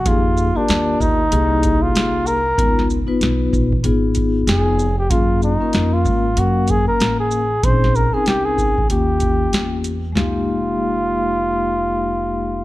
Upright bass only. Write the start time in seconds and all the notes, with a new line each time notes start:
0.06 F2
0.57 muted upright bass stroke
0.69 D#2
1.00 D2
1.33 C2
1.95 C2
2.58 C#2
3.08 muted upright bass stroke
3.21 B1
3.53 A#1
3.84 G#1
4.47 F1
5.10 F#2
5.61 muted upright bass stroke
5.74 F2
6.05 G#2
6.37 F#2
6.87 muted upright bass stroke
7.00 A1
7.63 A#1
8.13 muted upright bass stroke
8.27 C2
8.90 D#2
9.53 E2
10.15 F1